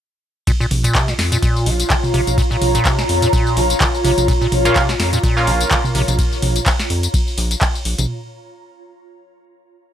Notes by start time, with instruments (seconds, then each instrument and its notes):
0.47 acid bass A#2, ambient pad F4, kick, closed hi-hat, ride, tambourine
0.60 acid bass A#2, tambourine
0.71 analog synth bass A#1, mid tom, open hi-hat
0.84 acid bass A#2, closed hi-hat, tambourine
0.95 acid bass C3, kick, clap, closed hi-hat, ride, tambourine
1.02 ambient pad C#5
1.08 acid bass A#2, snare, tambourine
1.19 analog synth bass F2, snare, open hi-hat
1.32 acid bass A#2, closed hi-hat, tambourine
1.42 acid bass A#2, kick, closed hi-hat, ride, tambourine
1.47 ambient pad A#5
1.56 tambourine
1.66 analog synth bass A#1, acid bass C3, open hi-hat
1.80 closed hi-hat, tambourine
1.90 acid bass C#3, kick, clap, closed hi-hat, ride, tambourine
2.03 mid tom, tambourine
2.14 analog synth bass A#1, acid bass C3, open hi-hat
2.27 analog synth bass A#1, closed hi-hat, mid tom, tambourine
2.38 acid bass A#2, kick, closed hi-hat, ride, tambourine
2.51 acid bass A#2, tambourine
2.62 analog synth bass A#1, mid tom, open hi-hat
2.75 acid bass A#2, closed hi-hat, tambourine
2.85 acid bass C3, kick, clap, closed hi-hat, ride, tambourine
2.99 acid bass A#2, snare, tambourine
3.09 analog synth bass F2, open hi-hat
3.22 acid bass A#2, closed hi-hat, tambourine
3.33 acid bass A#2, kick, closed hi-hat, ride, tambourine
3.47 tambourine
3.57 analog synth bass A#1, acid bass C3, open hi-hat
3.70 closed hi-hat, tambourine
3.81 acid bass C#3, kick, clap, closed hi-hat, ride, tambourine
3.95 tambourine
4.04 analog synth bass A#1, acid bass C3, open hi-hat
4.18 analog synth bass A#1, closed hi-hat, mid tom, tambourine
4.28 acid bass A#2, kick, closed hi-hat, ride, tambourine
4.41 acid bass A#2, tambourine
4.52 analog synth bass A#1, mid tom, open hi-hat
4.65 acid bass A#2, synth stab A#3 C#4 F4, closed hi-hat, tambourine
4.76 acid bass C3, kick, clap, closed hi-hat, ride, tambourine
4.89 acid bass A#2, snare, tambourine
5.00 analog synth bass F2, snare, open hi-hat
5.13 acid bass A#2, closed hi-hat, tambourine
5.23 acid bass A#2, kick, closed hi-hat, ride, tambourine
5.37 synth stab A#3 C#4 F4, tambourine
5.47 analog synth bass A#1, acid bass C3, open hi-hat
5.61 closed hi-hat, tambourine
5.71 acid bass C#3, kick, clap, closed hi-hat, ride, tambourine
5.84 mid tom, tambourine
5.95 analog synth bass A#1, acid bass C3, open hi-hat
6.08 analog synth bass A#1, closed hi-hat, mid tom, tambourine
6.19 kick, closed hi-hat, ride, tambourine
6.32 tambourine
6.42 analog synth bass A#1, mid tom, open hi-hat
6.56 closed hi-hat, tambourine
6.66 kick, clap, closed hi-hat, ride, tambourine
6.80 snare, tambourine
6.90 analog synth bass F2, open hi-hat
7.03 closed hi-hat, tambourine
7.14 kick, closed hi-hat, ride, tambourine
7.28 tambourine
7.38 analog synth bass A#1, open hi-hat
7.51 closed hi-hat, tambourine
7.61 kick, clap, closed hi-hat, ride, tambourine
7.75 tambourine
7.85 analog synth bass A#1, open hi-hat
7.98 analog synth bass A#1, closed hi-hat, mid tom, tambourine